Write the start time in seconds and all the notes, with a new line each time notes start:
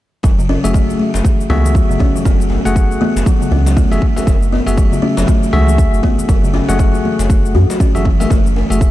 0.23 F#1 F#3, kick, djembe tone, shaker
0.39 C#3, muted conga, shaker
0.49 C#4, djembe tone
0.64 F#1 F#3 A3 F#4 G#4 E5, high conga, shaker
0.74 A3, kick, shaker
0.89 muted conga, shaker
0.99 high conga
1.14 F#1, djembe slap, shaker
1.25 kick, muted conga, high conga, low conga, shaker
1.41 shaker
1.50 C#2 A3 B3 F#4 G#4 E5, djembe tone, djembe bass, low conga
1.65 muted conga, low conga, shaker
1.75 F#3, kick, shaker
1.89 F#1 C#3, shaker
2.00 C#4, kick, muted conga, high conga, djembe bass
2.15 F#3, low conga, shaker
2.25 F#1 A3, kick, djembe tone, shaker
2.40 muted conga, shaker
2.50 djembe tone
2.65 F#1 A3 F#4 G#4 F#5, high conga, shaker
2.76 kick, shaker
2.91 muted conga, shaker
3.01 B3, high conga, low conga
3.16 F#1, djembe slap, shaker
3.26 F#3, kick, muted conga, high conga, shaker
3.41 C#3, shaker
3.51 C#2 C#4, high conga, djembe bass, low conga
3.66 F#3, djembe slap, muted conga, shaker
3.77 A3, kick, shaker
3.91 F#1 A3 F#4 G#4 E5, high conga, low conga, shaker
4.02 kick, muted conga
4.16 A3 F#4 G#4 E5, high conga, djembe tone, shaker
4.27 F#1, kick, djembe tone, shaker
4.41 muted conga, shaker
4.52 B3, djembe tone
4.66 F#1 A3 F#4 G#4 E5, high conga, shaker
4.77 F#3, kick, shaker
4.92 C#3, muted conga, shaker
5.02 C#4, high conga
5.17 F#1 F#3, djembe slap, shaker
5.27 A3, kick, muted conga, high conga, low conga, shaker
5.43 shaker
5.53 C#2 A3 F#4 G#4 E5, djembe tone, low conga, djembe bass
5.67 muted conga, low conga, shaker
5.78 kick, shaker
5.93 F#1, shaker
6.03 B3, kick, muted conga, high conga, djembe bass
6.19 low conga, shaker
6.29 F#1 F#3, kick, djembe tone, shaker
6.44 C#3, muted conga, shaker
6.54 C#4, djembe tone
6.69 F#1 F#3 A3 F#4 G#4 F#5, high conga, shaker
6.79 A3, kick, shaker
6.95 muted conga, shaker
7.05 high conga, low conga
7.19 F#1, djembe slap, shaker
7.30 kick, muted conga, high conga, shaker
7.45 shaker
7.54 F#2 F#4, high conga, djembe bass, low conga
7.70 F#3, djembe slap, muted conga, shaker
7.80 C#4, kick, shaker
7.95 F#1 F#3 A3 F#4 G#4 E5, high conga, low conga, shaker
8.05 E3, kick, muted conga
8.20 A3 F#4 G#4 E5, djembe tone, high conga, shaker
8.30 F#1 A3, kick, djembe tone, shaker
8.46 muted conga, shaker
8.56 djembe tone
8.70 F#1 A3 F#4 G#4 E5, high conga, shaker
8.81 kick, shaker